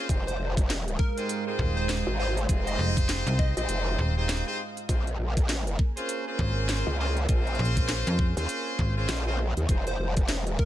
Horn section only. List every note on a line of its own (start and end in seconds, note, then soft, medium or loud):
0.09 0.28 C4 medium
0.09 0.28 D#4 medium
0.09 0.28 G4 medium
0.09 0.28 G#4 medium
0.09 0.28 C5 medium
1.17 1.43 C4 medium
1.17 1.43 D#4 medium
1.17 1.43 G4 medium
1.17 1.43 G#4 medium
1.17 1.43 C5 loud
1.47 2.16 C4 loud
1.47 2.16 D#4 medium
1.47 2.16 G4 medium
1.47 2.16 G#4 medium
1.47 2.16 C5 loud
2.19 2.38 C4 loud
2.19 2.38 D#4 loud
2.19 2.38 G4 medium
2.19 2.38 G#4 medium
2.19 2.38 C5 loud
2.49 3.53 C4 loud
2.49 3.53 D#4 loud
2.49 3.53 G4 loud
2.49 3.53 G#4 medium
2.49 3.53 C5 loud
3.57 4.13 C4 medium
3.57 4.14 D#4 loud
3.57 4.14 G4 medium
3.57 4.14 G#4 medium
3.57 4.13 C5 loud
4.17 4.43 C4 medium
4.17 4.43 D#4 loud
4.17 4.43 G4 medium
4.17 4.43 G#4 medium
4.17 4.43 C5 loud
4.47 4.60 C4 loud
4.47 4.60 D#4 medium
4.47 4.60 G4 medium
4.47 4.60 G#4 medium
4.47 4.60 C5 loud
4.89 5.08 C4 medium
4.89 5.08 C#4 medium
4.89 5.08 F4 medium
4.89 5.08 G#4 medium
4.89 5.08 C5 medium
5.97 6.23 C4 medium
5.97 6.23 C#4 medium
5.97 6.23 F4 medium
5.97 6.23 G#4 medium
5.97 6.23 C5 loud
6.27 6.96 C4 loud
6.27 6.96 C#4 loud
6.27 6.96 F4 medium
6.27 6.96 G#4 medium
6.27 6.96 C5 loud
6.99 7.18 C4 loud
6.99 7.18 C#4 loud
6.99 7.18 F4 medium
6.99 7.18 G#4 medium
6.99 7.18 C5 loud
7.29 8.33 C4 loud
7.29 8.33 C#4 loud
7.29 8.33 F4 loud
7.29 8.33 G#4 loud
7.29 8.33 C5 loud
8.37 8.94 C4 loud
8.37 8.94 C#4 medium
8.37 8.94 F4 medium
8.37 8.94 G#4 medium
8.37 8.94 C5 loud
8.97 9.23 C4 loud
8.97 9.23 C#4 loud
8.97 9.23 F4 medium
8.97 9.23 G#4 medium
8.97 9.23 C5 loud
9.27 9.40 C4 medium
9.27 9.40 C#4 medium
9.27 9.40 F4 medium
9.27 9.40 G#4 medium
9.27 9.40 C5 loud
9.69 9.88 C4 medium
9.69 9.88 D#4 medium
9.69 9.88 G4 medium
9.69 9.88 G#4 medium
9.69 9.88 C5 medium